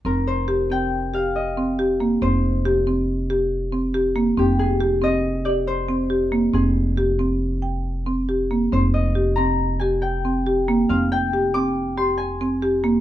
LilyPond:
<<
  \new Staff \with { instrumentName = "Harp" } { \time 5/4 \key f \dorian \tempo 4 = 138 bes'8 c''4 g''4 f''8 ees''2 | c''1 r4 | g'8 aes'4 ees''4 d''8 c''2 | aes'1 r4 |
c''8 ees''4 bes''4 aes''8 g''2 | f''8 g''4 d'''4 c'''8 aes''2 | }
  \new Staff \with { instrumentName = "Marimba" } { \time 5/4 \key f \dorian c'4 g'8 c'4 g'4 c'8 g'8 bes8 | c'4 g'8 c'4 g'4 c'8 g'8 bes8 | c'4 g'8 c'4 g'4 c'8 g'8 bes8 | c'4 g'8 c'4 g''4 c'8 g'8 bes8 |
c'4 g'8 c'4 g'4 c'8 g'8 bes8 | c'4 g'8 c'4 g'4 c'8 g'8 bes8 | }
  \new Staff \with { instrumentName = "Upright bass" } { \clef bass \time 5/4 \key f \dorian f,,1~ f,,4 | f,,1~ f,,4 | f,,1~ f,,4 | f,,1~ f,,4 |
f,,1~ f,,4 | f,,1~ f,,4 | }
>>